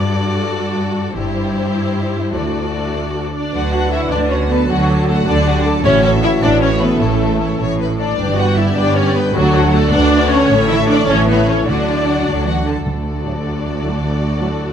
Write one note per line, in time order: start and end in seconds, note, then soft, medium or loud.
0.00 1.13 G2 medium
0.00 1.16 G2 medium
0.00 0.18 D4 soft
0.00 1.16 F#4 medium
0.00 1.17 A4 medium
0.00 1.14 D5 medium
0.19 0.58 D4 soft
0.39 1.18 A4 soft
0.59 0.97 D4 soft
0.78 1.18 F#4 soft
0.98 1.19 D4 soft
1.16 1.53 G1 medium
1.16 2.32 G2 medium
1.16 2.36 G2 medium
1.16 2.32 E4 medium
1.16 2.33 G4 medium
1.16 2.32 C5 medium
1.37 1.75 E4 soft
1.57 2.37 C5 soft
1.76 2.15 E4 soft
1.96 2.37 G4 soft
2.16 2.37 E4 soft
2.34 3.33 D2 soft
2.34 2.72 D2 soft
2.34 3.53 D3 soft
2.34 3.33 F#4 soft
2.34 3.32 A4 soft
2.34 3.33 D5 soft
2.56 2.94 D4 soft
2.76 3.81 A4 soft
2.95 3.33 D4 soft
3.15 3.71 F#4 soft
3.34 3.70 D4 medium
3.34 3.62 D4 soft
3.34 3.70 D5 medium
3.53 4.05 D2 medium
3.53 4.69 D3 soft
3.53 4.05 D3 soft
3.53 5.82 F#3 soft
3.53 5.81 D4 soft
3.53 3.72 F#4 soft
3.53 4.65 B4 medium
3.53 3.72 F#5 soft
3.63 4.60 D4 soft
3.71 3.91 F#4 medium
3.71 4.40 F#4 soft
3.71 3.92 A4 soft
3.71 3.92 F#5 medium
3.71 3.92 A5 soft
3.82 4.97 A4 soft
3.91 4.11 E4 medium
3.91 4.12 F#4 soft
3.91 4.29 D5 soft
3.91 4.00 E5 medium
3.91 4.12 E5 medium
3.91 4.12 F#5 soft
4.02 4.21 F#5 soft
4.11 4.63 D2 medium
4.11 4.63 D3 medium
4.11 4.31 D4 medium
4.11 4.31 A4 soft
4.11 4.19 D5 medium
4.11 4.31 D5 medium
4.11 5.26 A5 soft
4.11 4.31 A5 soft
4.22 5.16 F#5 soft
4.30 4.50 C#4 medium
4.30 4.50 F#4 soft
4.30 4.38 C#5 medium
4.30 4.50 C#5 medium
4.30 5.07 D5 soft
4.30 4.50 F#5 soft
4.41 4.88 F#4 soft
4.50 4.78 A3 soft
4.50 4.69 B3 medium
4.50 4.70 A4 soft
4.50 4.69 B4 medium
4.50 4.70 B4 medium
4.50 4.70 A5 soft
4.61 5.73 D4 soft
4.70 5.21 D2 medium
4.70 5.21 D3 medium
4.70 5.87 D3 medium
4.70 5.08 F#3 medium
4.70 5.07 F#4 medium
4.70 5.08 F#4 medium
4.70 4.90 F#4 soft
4.70 5.27 A4 soft
4.70 4.89 F#5 soft
4.79 5.64 A3 soft
4.88 5.55 F#4 soft
4.88 5.08 A4 soft
4.88 5.07 A5 soft
4.98 6.12 A4 soft
5.07 5.28 A3 medium
5.07 5.27 F#4 soft
5.07 5.15 A4 medium
5.07 5.13 A4 medium
5.07 5.45 D5 soft
5.07 5.27 F#5 soft
5.18 5.36 F#5 soft
5.25 5.78 D3 medium
5.25 5.66 D4 medium
5.25 5.35 F#4 medium
5.25 5.47 A4 medium
5.25 5.64 D5 medium
5.25 5.65 D5 medium
5.25 6.41 A5 medium
5.25 5.47 A5 medium
5.29 5.79 D2 medium
5.37 5.87 F#5 medium
5.45 5.66 F#4 medium
5.45 5.64 G4 medium
5.45 5.86 D5 medium
5.45 5.66 F#5 medium
5.56 5.86 F#4 medium
5.65 8.20 A3 medium
5.65 5.85 A4 medium
5.65 5.85 A5 medium
5.74 5.86 D4 medium
5.84 6.37 A1 medium
5.84 6.98 A2 medium
5.84 6.39 A2 medium
5.84 6.36 A2 medium
5.84 6.98 E3 medium
5.84 6.02 C#4 loud
5.84 6.98 C#4 medium
5.84 6.03 E4 medium
5.84 6.99 F#4 medium
5.84 6.03 C#5 medium
5.84 5.92 C#5 medium
5.84 6.03 C#5 medium
5.93 6.88 C#4 medium
6.03 6.11 C#4 medium
6.03 6.69 E4 medium
6.03 6.23 A4 medium
6.03 6.12 C#5 medium
6.03 6.11 C#5 medium
6.03 6.23 E5 medium
6.13 7.27 A4 medium
6.22 6.43 E4 medium
6.22 6.31 E4 medium
6.22 6.59 C#5 medium
6.22 6.43 C#5 medium
6.22 6.31 E5 medium
6.22 6.43 E5 medium
6.32 6.50 E5 medium
6.42 6.95 A1 medium
6.42 6.94 A2 medium
6.42 6.62 D4 medium
6.42 6.63 A4 medium
6.42 6.62 D5 medium
6.42 6.51 D5 medium
6.42 6.63 E5 medium
6.42 7.57 A5 medium
6.51 7.47 E5 medium
6.60 6.69 C#4 medium
6.60 6.80 E4 medium
6.60 7.37 C#5 soft
6.60 6.81 C#5 medium
6.60 6.82 C#5 medium
6.60 6.69 C#5 medium
6.70 7.18 E4 soft
6.80 7.09 E3 soft
6.80 7.01 B3 medium
6.80 7.01 A4 medium
6.80 7.01 B4 medium
6.80 6.89 B4 medium
6.80 7.01 E5 medium
6.89 8.06 C#4 soft
6.99 7.53 A1 medium
6.99 8.19 A2 medium
6.99 7.52 A2 medium
6.99 7.96 E3 medium
6.99 7.59 A3 medium
6.99 7.96 C#4 medium
6.99 7.21 E4 medium
6.99 7.90 E4 medium
6.99 7.58 A4 medium
6.99 7.59 A4 medium
6.99 7.21 C#5 soft
7.10 7.96 E3 soft
7.19 7.86 E4 soft
7.19 7.41 A4 soft
7.19 7.41 E5 soft
7.29 8.19 A4 soft
7.38 7.58 E4 soft
7.38 7.78 C#5 soft
7.38 7.58 C#5 soft
7.48 7.67 E5 soft
7.58 8.12 A1 medium
7.58 8.11 A2 medium
7.58 7.78 C#5 medium
7.58 8.19 A5 soft
7.68 8.19 E5 soft
7.79 7.99 B4 soft
7.79 8.20 C#5 soft
7.87 8.19 E4 soft
7.98 8.19 E3 soft
7.98 8.35 D4 medium
7.98 8.18 A4 soft
7.98 8.35 D5 medium
7.98 8.36 D5 medium
8.07 8.19 C#4 soft
8.17 8.70 G1 medium
8.17 9.36 G2 medium
8.17 8.70 G2 medium
8.17 10.47 D3 medium
8.17 9.30 B3 medium
8.17 8.37 G4 soft
8.17 8.72 B4 medium
8.17 8.36 D5 soft
8.27 9.24 D4 soft
8.36 8.56 F#4 medium
8.36 9.05 G4 soft
8.36 8.57 B4 soft
8.36 8.43 F#5 medium
8.36 8.57 F#5 medium
8.36 8.57 G5 soft
8.47 9.36 B4 soft
8.56 8.76 E4 medium
8.56 8.77 G4 soft
8.56 8.76 D5 soft
8.56 8.95 D5 soft
8.56 8.76 E5 medium
8.56 8.64 E5 medium
8.67 8.85 G5 soft
8.75 9.29 G1 medium
8.75 9.28 G2 medium
8.75 8.95 D4 medium
8.75 9.35 G4 medium
8.75 8.97 B4 soft
8.75 8.95 D5 medium
8.75 8.96 D5 medium
8.75 8.96 G5 soft
8.75 9.37 B5 soft
8.87 9.37 G5 soft
8.94 9.15 C#4 medium
8.94 9.15 G4 medium
8.94 9.15 C#5 medium
8.94 9.17 C#5 medium
8.94 9.73 D5 soft
8.94 9.15 D5 medium
9.06 9.37 G4 soft
9.14 9.34 D3 soft
9.14 9.23 B3 medium
9.14 9.34 B4 medium
9.14 9.35 B4 medium
9.14 9.36 B4 medium
9.18 9.36 G5 medium
9.25 9.44 D4 soft
9.33 9.86 D2 medium
9.33 9.87 D2 medium
9.33 10.52 D3 medium
9.33 9.72 F#3 loud
9.33 11.64 A3 medium
9.33 9.73 F#4 medium
9.33 9.75 F#4 medium
9.33 9.91 A4 medium
9.38 9.54 F#4 medium
9.38 9.55 D5 medium
9.46 10.40 D4 medium
9.55 10.21 F#4 medium
9.55 9.75 A4 medium
9.55 9.75 F#5 medium
9.65 10.77 A4 medium
9.72 9.93 A3 medium
9.72 9.92 A4 medium
9.72 9.93 A4 medium
9.72 10.11 D5 medium
9.77 9.95 F#4 medium
9.77 9.95 D5 medium
9.84 10.02 F#5 medium
9.91 10.44 D2 medium
9.91 10.31 D4 loud
9.91 10.51 B4 medium
9.91 10.30 D5 medium
9.91 10.31 D5 medium
9.91 11.08 A5 medium
9.95 10.14 A4 medium
9.95 10.14 F#5 medium
10.03 10.53 F#5 medium
10.13 10.32 F#4 medium
10.13 10.53 D5 medium
10.13 10.32 D5 medium
10.22 10.53 F#4 medium
10.29 12.65 A3 medium
10.29 10.69 C#4 medium
10.29 10.52 A4 medium
10.29 10.70 C#5 medium
10.29 10.69 C#5 medium
10.29 10.52 F#5 medium
10.41 10.52 D4 medium
10.50 11.02 A1 medium
10.50 11.69 A2 medium
10.50 11.02 A2 medium
10.50 11.64 E3 medium
10.50 11.08 A4 medium
10.50 10.70 C#5 medium
10.50 10.70 E5 medium
10.60 11.37 E4 medium
10.68 11.47 E3 medium
10.68 10.76 E4 medium
10.68 10.91 A4 medium
10.68 10.90 E5 medium
10.68 10.89 E5 medium
10.72 10.91 C#5 medium
10.79 10.98 A4 medium
10.87 11.08 D4 medium
10.87 10.95 D5 medium
10.87 11.09 D5 medium
10.87 11.17 E5 medium
10.92 11.09 C#5 medium
10.92 11.11 E5 medium
10.99 11.27 A4 medium
11.07 11.61 A1 medium
11.07 11.61 A2 medium
11.07 11.27 C#4 loud
11.07 11.68 E4 medium
11.07 11.29 A4 medium
11.07 11.27 C#5 medium
11.07 11.30 C#5 medium
11.07 12.26 A5 medium
11.18 11.69 E5 medium
11.27 11.47 B3 medium
11.27 11.96 A4 soft
11.27 11.47 B4 medium
11.27 11.47 C#5 medium
11.27 11.47 E5 soft
11.31 11.49 B4 medium
11.38 11.57 E4 soft
11.48 11.70 E3 soft
11.48 11.67 C#4 medium
11.48 11.69 A4 soft
11.48 11.68 C#5 medium
11.48 11.69 C#5 soft
11.59 11.70 E4 soft
11.67 12.20 D2 medium
11.67 12.20 D3 medium
11.67 12.85 D3 medium
11.67 12.64 F#3 medium
11.67 12.63 A3 medium
11.67 12.64 D4 medium
11.67 12.56 F#4 soft
11.67 11.87 F#4 soft
11.67 12.66 D5 medium
11.67 12.67 D5 medium
11.67 11.87 F#5 soft
11.78 12.75 D4 soft
11.88 12.55 F#4 soft
11.88 12.09 A4 soft
11.88 12.08 A5 soft
11.97 13.04 A4 soft
12.07 12.28 F#4 soft
12.07 12.46 D5 soft
12.07 12.28 F#5 soft
12.18 12.36 F#5 soft
12.26 12.80 D2 medium
12.26 12.45 F#3 medium
12.26 12.48 A4 soft
12.26 14.73 A5 soft
12.26 12.48 A5 soft
12.37 14.73 F#5 soft
12.46 12.66 E3 medium
12.46 12.66 F#4 soft
12.46 14.73 D5 soft
12.46 12.65 F#5 soft
12.56 14.20 F#4 soft
12.66 12.86 D3 soft
12.66 14.73 A3 soft
12.66 12.87 A4 soft
12.66 12.87 A5 soft
12.76 13.63 D4 soft
12.86 14.73 D2 soft
12.86 14.01 D3 soft
12.86 13.41 D3 soft
12.86 14.73 F#4 soft
12.86 14.73 A4 soft
12.86 14.73 D5 soft
13.05 13.44 A4 soft
13.24 13.31 A2 soft
13.24 13.32 F#3 soft
13.24 13.33 A3 soft
13.24 13.33 D4 soft
13.24 13.58 G4 soft
13.45 13.82 A4 soft
13.64 14.73 D4 soft
13.82 13.89 A2 soft
13.82 13.90 F#3 soft
13.82 13.90 A3 soft
13.82 13.90 D4 soft
13.82 14.59 A4 soft
14.02 14.73 D3 soft
14.21 14.73 F#4 soft
14.39 14.47 A2 medium
14.39 14.47 F#3 medium
14.39 14.48 A3 soft
14.39 14.48 D4 medium
14.39 14.73 E4 soft
14.61 14.73 A4 soft